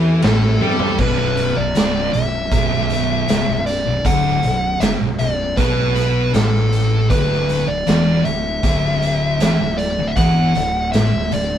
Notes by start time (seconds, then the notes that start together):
Already playing: E2 E3
0.22 A1 A2 A4, snare, ride
0.61 G2 G3, high tom
0.79 floor tom
0.98 B0 B1 B4, kick, crash
1.20 snare
1.37 closed hi-hat
1.57 B0 B1 D5
1.75 C#1 C#2, snare, closed hi-hat
2.13 B0 B1 E5, closed hi-hat
2.51 B0 B1, kick, closed hi-hat
2.73 snare
2.90 closed hi-hat
3.28 C#1 C#2, snare, closed hi-hat
3.48 B0 B1, snare
3.66 D5, closed hi-hat
3.85 B0 B1
4.04 D1 D2 F#5, kick, closed hi-hat
4.26 snare
4.43 B0 B1, closed hi-hat
4.80 G1 G2 E5, snare, closed hi-hat
5.00 B0 B1
5.19 B0 B1 D5, closed hi-hat
5.57 B1 B2 B4, kick, closed hi-hat
5.79 snare
5.95 B4, closed hi-hat
6.33 A1 A2 A4, snare, closed hi-hat
6.55 snare
6.72 closed hi-hat
7.10 D1 D2 B4, kick, closed hi-hat
7.32 snare
7.49 closed hi-hat
7.67 D1 D2 D5
7.86 E1 E2, snare, closed hi-hat
8.25 D1 D2 E5, closed hi-hat
8.63 D1 D2, kick, closed hi-hat
8.85 snare
9.02 closed hi-hat
9.40 E1 E2, snare, closed hi-hat
9.60 D1 D2, snare
9.78 D5, closed hi-hat
9.98 D1 D2
10.07 E5
10.16 E1 E2 F#5, kick, closed hi-hat
10.55 D1 D2, closed hi-hat
10.92 A1 A2 E5, snare, closed hi-hat
11.13 D1 D2
11.31 D1 D2 D5, closed hi-hat